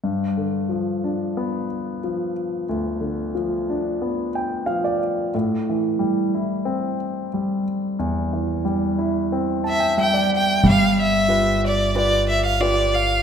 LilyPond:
<<
  \new Staff \with { instrumentName = "Violin" } { \time 4/4 \key g \mixolydian \tempo 4 = 91 r1 | r1 | r1 | r2 r8 e''8 g''8 g''8 |
f''8 e''4 d''8 d''8 e''16 f''16 d''8 f''8 | }
  \new Staff \with { instrumentName = "Grand piano" } { \time 4/4 \key g \mixolydian r1 | r2 r8 g''8 f''16 d''8. | r1 | r2 r8 a''16 g''16 e''16 d''8. |
r1 | }
  \new Staff \with { instrumentName = "Grand piano" } { \time 4/4 \key g \mixolydian g,8 d8 f8 d'8 b4 f4 | d,8 d8 f8 d'8 b4 f4 | a,8 e8 g8 e'8 c'4 g4 | e,8 e8 g8 e'8 c'4 g4 |
g4 <f' g' b'>4 <f' g' b'>4 <f' g' b'>4 | }
  \new Staff \with { instrumentName = "Upright bass" } { \clef bass \time 4/4 \key g \mixolydian r1 | r1 | r1 | r1 |
g,,1 | }
>>